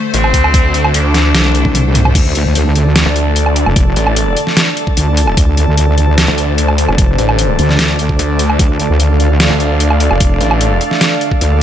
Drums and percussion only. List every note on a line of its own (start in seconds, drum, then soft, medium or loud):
0.14 closed hi-hat medium
0.24 low woodblock medium
0.34 kick medium
0.34 open hi-hat loud
0.44 low woodblock medium
0.54 kick loud
0.54 closed hi-hat medium
0.74 closed hi-hat medium
0.85 low woodblock medium
0.94 closed hi-hat medium
1.14 snare medium
1.14 closed hi-hat medium
1.35 snare loud
1.35 closed hi-hat medium
1.35 high tom medium
1.45 high tom medium
1.55 closed hi-hat medium
1.65 kick medium
1.65 mid tom medium
1.75 closed hi-hat medium
1.75 mid tom medium
1.95 mid tom loud
1.95 open hi-hat medium
2.05 mid tom medium
2.05 low woodblock medium
2.15 kick loud
2.15 closed hi-hat medium
2.15 crash loud
2.35 closed hi-hat medium
2.55 closed hi-hat medium
2.75 closed hi-hat medium
2.96 snare loud
2.96 closed hi-hat medium
3.16 closed hi-hat medium
3.36 closed hi-hat medium
3.46 low woodblock medium
3.56 open hi-hat loud
3.66 low woodblock medium
3.76 kick loud
3.76 closed hi-hat medium
3.96 closed hi-hat medium
4.07 low woodblock medium
4.16 closed hi-hat medium
4.37 closed hi-hat medium
4.47 snare soft
4.57 snare loud
4.57 closed hi-hat medium
4.77 closed hi-hat medium
4.87 kick medium
4.97 closed hi-hat medium
5.17 open hi-hat loud
5.27 low woodblock medium
5.37 kick loud
5.37 closed hi-hat medium
5.57 closed hi-hat medium
5.77 closed hi-hat medium
5.98 closed hi-hat medium
6.18 snare loud
6.18 closed hi-hat medium
6.38 closed hi-hat medium
6.58 closed hi-hat medium
6.68 low woodblock soft
6.78 open hi-hat medium
6.89 low woodblock medium
6.98 kick loud
6.98 closed hi-hat medium
7.18 closed hi-hat medium
7.29 low woodblock medium
7.39 closed hi-hat medium
7.59 closed hi-hat medium
7.69 snare soft
7.79 snare loud
7.79 closed hi-hat medium
7.99 closed hi-hat medium
8.09 kick medium
8.19 closed hi-hat medium
8.39 open hi-hat medium
8.50 low woodblock medium
8.59 kick loud
8.59 closed hi-hat medium
8.80 closed hi-hat soft
9.00 closed hi-hat medium
9.20 closed hi-hat soft
9.40 snare loud
9.40 closed hi-hat medium
9.60 closed hi-hat soft
9.80 closed hi-hat medium
9.91 low woodblock medium
10.00 open hi-hat medium
10.11 low woodblock medium
10.20 kick loud
10.20 closed hi-hat medium
10.41 closed hi-hat medium
10.51 low woodblock medium
10.61 closed hi-hat medium
10.81 closed hi-hat soft
10.91 snare soft
11.01 snare loud
11.01 closed hi-hat medium
11.21 closed hi-hat soft
11.31 kick medium
11.41 closed hi-hat medium